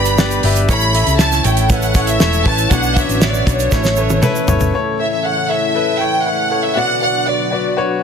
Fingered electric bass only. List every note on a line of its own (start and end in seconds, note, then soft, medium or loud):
0.00 0.39 G1 loud
0.43 0.67 G1 medium
0.69 1.04 A1 loud
1.07 1.42 C#2 medium
1.45 2.17 A1 loud
2.20 2.44 E1 medium
2.46 2.69 A1 medium
2.71 3.06 B1 loud
3.09 3.44 A1 medium
3.47 3.70 B1 loud
3.72 4.19 A1 medium
4.48 4.72 G1 medium